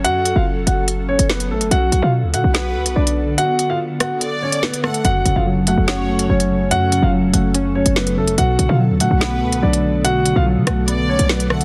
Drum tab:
HH |x-x---x-x--x-x-x|x-x---x-x--x-x--|x-x---x-x--x-x-x|x-x---x-x--x-x--|
SD |------------o---|--------o-------|------r-----o-r-|--------o-------|

HH |x-x---x-x--x-x-x|x-x---x-x--x-x--|x-x---x-x--x-x-x|
SD |------------o---|--------o-------|------r-----o-r-|